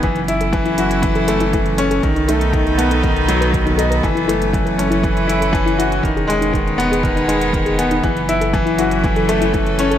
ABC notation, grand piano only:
X:1
M:4/4
L:1/8
Q:1/4=120
K:F#dor
V:1 name="Grand piano" clef=bass
E, E E, F E, A, E, C | D, A, D, B, D, F, D, D | E, A, E, C E, E E, F | D, G, D, B, D, G, D, B, |
E, E E, F E, A, E, C |]